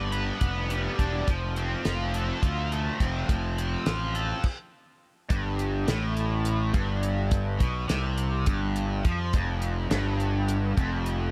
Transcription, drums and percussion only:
0, 0, Header, 1, 2, 480
1, 0, Start_track
1, 0, Tempo, 575264
1, 1067, Time_signature, 7, 3, 24, 8
1, 9440, End_track
2, 0, Start_track
2, 0, Title_t, "Drums"
2, 102, Note_on_c, 9, 42, 59
2, 186, Note_off_c, 9, 42, 0
2, 341, Note_on_c, 9, 42, 80
2, 345, Note_on_c, 9, 36, 97
2, 424, Note_off_c, 9, 42, 0
2, 429, Note_off_c, 9, 36, 0
2, 585, Note_on_c, 9, 42, 59
2, 669, Note_off_c, 9, 42, 0
2, 826, Note_on_c, 9, 36, 70
2, 828, Note_on_c, 9, 42, 52
2, 909, Note_off_c, 9, 36, 0
2, 911, Note_off_c, 9, 42, 0
2, 1065, Note_on_c, 9, 42, 75
2, 1066, Note_on_c, 9, 36, 96
2, 1148, Note_off_c, 9, 42, 0
2, 1150, Note_off_c, 9, 36, 0
2, 1304, Note_on_c, 9, 42, 53
2, 1388, Note_off_c, 9, 42, 0
2, 1542, Note_on_c, 9, 42, 70
2, 1547, Note_on_c, 9, 38, 98
2, 1626, Note_off_c, 9, 42, 0
2, 1630, Note_off_c, 9, 38, 0
2, 1786, Note_on_c, 9, 42, 54
2, 1870, Note_off_c, 9, 42, 0
2, 2025, Note_on_c, 9, 42, 75
2, 2026, Note_on_c, 9, 36, 96
2, 2109, Note_off_c, 9, 36, 0
2, 2109, Note_off_c, 9, 42, 0
2, 2270, Note_on_c, 9, 42, 53
2, 2353, Note_off_c, 9, 42, 0
2, 2506, Note_on_c, 9, 36, 71
2, 2506, Note_on_c, 9, 42, 55
2, 2510, Note_on_c, 9, 38, 31
2, 2590, Note_off_c, 9, 36, 0
2, 2590, Note_off_c, 9, 42, 0
2, 2594, Note_off_c, 9, 38, 0
2, 2746, Note_on_c, 9, 36, 98
2, 2747, Note_on_c, 9, 42, 79
2, 2830, Note_off_c, 9, 36, 0
2, 2830, Note_off_c, 9, 42, 0
2, 2990, Note_on_c, 9, 42, 61
2, 3073, Note_off_c, 9, 42, 0
2, 3221, Note_on_c, 9, 42, 81
2, 3225, Note_on_c, 9, 38, 105
2, 3305, Note_off_c, 9, 42, 0
2, 3309, Note_off_c, 9, 38, 0
2, 3462, Note_on_c, 9, 42, 58
2, 3545, Note_off_c, 9, 42, 0
2, 3701, Note_on_c, 9, 49, 80
2, 3704, Note_on_c, 9, 36, 93
2, 3785, Note_off_c, 9, 49, 0
2, 3788, Note_off_c, 9, 36, 0
2, 4422, Note_on_c, 9, 42, 79
2, 4425, Note_on_c, 9, 36, 101
2, 4506, Note_off_c, 9, 42, 0
2, 4509, Note_off_c, 9, 36, 0
2, 4664, Note_on_c, 9, 42, 57
2, 4748, Note_off_c, 9, 42, 0
2, 4904, Note_on_c, 9, 42, 80
2, 4909, Note_on_c, 9, 38, 99
2, 4988, Note_off_c, 9, 42, 0
2, 4992, Note_off_c, 9, 38, 0
2, 5145, Note_on_c, 9, 42, 53
2, 5228, Note_off_c, 9, 42, 0
2, 5383, Note_on_c, 9, 42, 80
2, 5466, Note_off_c, 9, 42, 0
2, 5622, Note_on_c, 9, 42, 53
2, 5626, Note_on_c, 9, 36, 90
2, 5706, Note_off_c, 9, 42, 0
2, 5709, Note_off_c, 9, 36, 0
2, 5865, Note_on_c, 9, 42, 57
2, 5948, Note_off_c, 9, 42, 0
2, 6101, Note_on_c, 9, 42, 78
2, 6105, Note_on_c, 9, 36, 102
2, 6184, Note_off_c, 9, 42, 0
2, 6189, Note_off_c, 9, 36, 0
2, 6344, Note_on_c, 9, 42, 61
2, 6346, Note_on_c, 9, 36, 105
2, 6348, Note_on_c, 9, 38, 32
2, 6427, Note_off_c, 9, 42, 0
2, 6429, Note_off_c, 9, 36, 0
2, 6431, Note_off_c, 9, 38, 0
2, 6586, Note_on_c, 9, 42, 82
2, 6590, Note_on_c, 9, 38, 103
2, 6669, Note_off_c, 9, 42, 0
2, 6673, Note_off_c, 9, 38, 0
2, 6822, Note_on_c, 9, 42, 61
2, 6905, Note_off_c, 9, 42, 0
2, 7061, Note_on_c, 9, 42, 84
2, 7068, Note_on_c, 9, 36, 104
2, 7145, Note_off_c, 9, 42, 0
2, 7152, Note_off_c, 9, 36, 0
2, 7307, Note_on_c, 9, 42, 60
2, 7390, Note_off_c, 9, 42, 0
2, 7548, Note_on_c, 9, 42, 63
2, 7551, Note_on_c, 9, 36, 99
2, 7632, Note_off_c, 9, 42, 0
2, 7635, Note_off_c, 9, 36, 0
2, 7787, Note_on_c, 9, 42, 83
2, 7791, Note_on_c, 9, 36, 99
2, 7870, Note_off_c, 9, 42, 0
2, 7875, Note_off_c, 9, 36, 0
2, 8025, Note_on_c, 9, 42, 60
2, 8109, Note_off_c, 9, 42, 0
2, 8266, Note_on_c, 9, 42, 79
2, 8270, Note_on_c, 9, 38, 101
2, 8350, Note_off_c, 9, 42, 0
2, 8354, Note_off_c, 9, 38, 0
2, 8511, Note_on_c, 9, 42, 55
2, 8594, Note_off_c, 9, 42, 0
2, 8749, Note_on_c, 9, 42, 82
2, 8832, Note_off_c, 9, 42, 0
2, 8990, Note_on_c, 9, 42, 56
2, 8991, Note_on_c, 9, 36, 91
2, 9074, Note_off_c, 9, 36, 0
2, 9074, Note_off_c, 9, 42, 0
2, 9228, Note_on_c, 9, 42, 55
2, 9312, Note_off_c, 9, 42, 0
2, 9440, End_track
0, 0, End_of_file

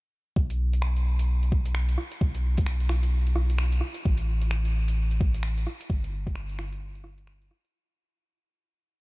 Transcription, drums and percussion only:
0, 0, Header, 1, 2, 480
1, 0, Start_track
1, 0, Tempo, 461538
1, 375, Time_signature, 4, 2, 24, 8
1, 9362, End_track
2, 0, Start_track
2, 0, Title_t, "Drums"
2, 378, Note_on_c, 9, 36, 113
2, 482, Note_off_c, 9, 36, 0
2, 521, Note_on_c, 9, 42, 44
2, 625, Note_off_c, 9, 42, 0
2, 764, Note_on_c, 9, 42, 54
2, 854, Note_on_c, 9, 26, 99
2, 868, Note_off_c, 9, 42, 0
2, 958, Note_off_c, 9, 26, 0
2, 1002, Note_on_c, 9, 42, 31
2, 1106, Note_off_c, 9, 42, 0
2, 1240, Note_on_c, 9, 42, 54
2, 1344, Note_off_c, 9, 42, 0
2, 1485, Note_on_c, 9, 42, 31
2, 1578, Note_on_c, 9, 36, 99
2, 1589, Note_off_c, 9, 42, 0
2, 1682, Note_off_c, 9, 36, 0
2, 1719, Note_on_c, 9, 42, 56
2, 1815, Note_on_c, 9, 26, 105
2, 1823, Note_off_c, 9, 42, 0
2, 1919, Note_off_c, 9, 26, 0
2, 1960, Note_on_c, 9, 42, 42
2, 2055, Note_on_c, 9, 37, 37
2, 2064, Note_off_c, 9, 42, 0
2, 2159, Note_off_c, 9, 37, 0
2, 2199, Note_on_c, 9, 42, 54
2, 2299, Note_on_c, 9, 36, 115
2, 2303, Note_off_c, 9, 42, 0
2, 2403, Note_off_c, 9, 36, 0
2, 2439, Note_on_c, 9, 42, 45
2, 2543, Note_off_c, 9, 42, 0
2, 2679, Note_on_c, 9, 42, 57
2, 2684, Note_on_c, 9, 36, 103
2, 2773, Note_on_c, 9, 26, 103
2, 2783, Note_off_c, 9, 42, 0
2, 2788, Note_off_c, 9, 36, 0
2, 2877, Note_off_c, 9, 26, 0
2, 2917, Note_on_c, 9, 42, 30
2, 3011, Note_on_c, 9, 26, 61
2, 3011, Note_on_c, 9, 37, 50
2, 3021, Note_off_c, 9, 42, 0
2, 3115, Note_off_c, 9, 26, 0
2, 3115, Note_off_c, 9, 37, 0
2, 3153, Note_on_c, 9, 42, 56
2, 3257, Note_off_c, 9, 42, 0
2, 3399, Note_on_c, 9, 42, 30
2, 3491, Note_on_c, 9, 37, 48
2, 3503, Note_off_c, 9, 42, 0
2, 3595, Note_off_c, 9, 37, 0
2, 3639, Note_on_c, 9, 42, 57
2, 3729, Note_on_c, 9, 26, 110
2, 3743, Note_off_c, 9, 42, 0
2, 3833, Note_off_c, 9, 26, 0
2, 3873, Note_on_c, 9, 42, 44
2, 3961, Note_on_c, 9, 37, 35
2, 3977, Note_off_c, 9, 42, 0
2, 4065, Note_off_c, 9, 37, 0
2, 4103, Note_on_c, 9, 42, 58
2, 4207, Note_off_c, 9, 42, 0
2, 4218, Note_on_c, 9, 36, 119
2, 4322, Note_off_c, 9, 36, 0
2, 4344, Note_on_c, 9, 42, 44
2, 4448, Note_off_c, 9, 42, 0
2, 4594, Note_on_c, 9, 42, 52
2, 4692, Note_on_c, 9, 26, 109
2, 4698, Note_off_c, 9, 42, 0
2, 4796, Note_off_c, 9, 26, 0
2, 4838, Note_on_c, 9, 42, 31
2, 4942, Note_off_c, 9, 42, 0
2, 5079, Note_on_c, 9, 42, 53
2, 5183, Note_off_c, 9, 42, 0
2, 5316, Note_on_c, 9, 42, 30
2, 5414, Note_on_c, 9, 36, 106
2, 5420, Note_off_c, 9, 42, 0
2, 5518, Note_off_c, 9, 36, 0
2, 5558, Note_on_c, 9, 42, 55
2, 5646, Note_on_c, 9, 26, 110
2, 5662, Note_off_c, 9, 42, 0
2, 5750, Note_off_c, 9, 26, 0
2, 5798, Note_on_c, 9, 42, 44
2, 5892, Note_on_c, 9, 37, 34
2, 5902, Note_off_c, 9, 42, 0
2, 5996, Note_off_c, 9, 37, 0
2, 6038, Note_on_c, 9, 42, 55
2, 6132, Note_on_c, 9, 36, 127
2, 6142, Note_off_c, 9, 42, 0
2, 6236, Note_off_c, 9, 36, 0
2, 6281, Note_on_c, 9, 42, 42
2, 6385, Note_off_c, 9, 42, 0
2, 6517, Note_on_c, 9, 36, 105
2, 6519, Note_on_c, 9, 42, 51
2, 6609, Note_on_c, 9, 26, 105
2, 6621, Note_off_c, 9, 36, 0
2, 6623, Note_off_c, 9, 42, 0
2, 6713, Note_off_c, 9, 26, 0
2, 6753, Note_on_c, 9, 42, 30
2, 6852, Note_on_c, 9, 26, 60
2, 6852, Note_on_c, 9, 37, 49
2, 6857, Note_off_c, 9, 42, 0
2, 6956, Note_off_c, 9, 26, 0
2, 6956, Note_off_c, 9, 37, 0
2, 6994, Note_on_c, 9, 42, 53
2, 7098, Note_off_c, 9, 42, 0
2, 7232, Note_on_c, 9, 42, 29
2, 7321, Note_on_c, 9, 37, 46
2, 7336, Note_off_c, 9, 42, 0
2, 7425, Note_off_c, 9, 37, 0
2, 7466, Note_on_c, 9, 42, 54
2, 7564, Note_on_c, 9, 26, 109
2, 7570, Note_off_c, 9, 42, 0
2, 7668, Note_off_c, 9, 26, 0
2, 7713, Note_on_c, 9, 42, 43
2, 7810, Note_on_c, 9, 37, 35
2, 7817, Note_off_c, 9, 42, 0
2, 7914, Note_off_c, 9, 37, 0
2, 7952, Note_on_c, 9, 42, 56
2, 8056, Note_off_c, 9, 42, 0
2, 9362, End_track
0, 0, End_of_file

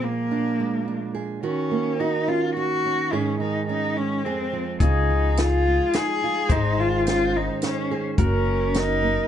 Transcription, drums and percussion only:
0, 0, Header, 1, 2, 480
1, 0, Start_track
1, 0, Key_signature, -5, "major"
1, 0, Tempo, 562324
1, 1222, Time_signature, 3, 2, 24, 8
1, 7919, End_track
2, 0, Start_track
2, 0, Title_t, "Drums"
2, 4100, Note_on_c, 9, 36, 82
2, 4101, Note_on_c, 9, 42, 49
2, 4185, Note_off_c, 9, 36, 0
2, 4186, Note_off_c, 9, 42, 0
2, 4586, Note_on_c, 9, 42, 52
2, 4597, Note_on_c, 9, 38, 70
2, 4671, Note_off_c, 9, 42, 0
2, 4682, Note_off_c, 9, 38, 0
2, 5064, Note_on_c, 9, 42, 54
2, 5075, Note_on_c, 9, 38, 80
2, 5150, Note_off_c, 9, 42, 0
2, 5161, Note_off_c, 9, 38, 0
2, 5545, Note_on_c, 9, 36, 93
2, 5546, Note_on_c, 9, 42, 51
2, 5631, Note_off_c, 9, 36, 0
2, 5631, Note_off_c, 9, 42, 0
2, 6031, Note_on_c, 9, 42, 57
2, 6042, Note_on_c, 9, 38, 72
2, 6117, Note_off_c, 9, 42, 0
2, 6128, Note_off_c, 9, 38, 0
2, 6501, Note_on_c, 9, 42, 58
2, 6513, Note_on_c, 9, 38, 68
2, 6587, Note_off_c, 9, 42, 0
2, 6598, Note_off_c, 9, 38, 0
2, 6984, Note_on_c, 9, 36, 97
2, 6984, Note_on_c, 9, 42, 55
2, 7069, Note_off_c, 9, 36, 0
2, 7069, Note_off_c, 9, 42, 0
2, 7463, Note_on_c, 9, 42, 51
2, 7474, Note_on_c, 9, 38, 69
2, 7548, Note_off_c, 9, 42, 0
2, 7559, Note_off_c, 9, 38, 0
2, 7919, End_track
0, 0, End_of_file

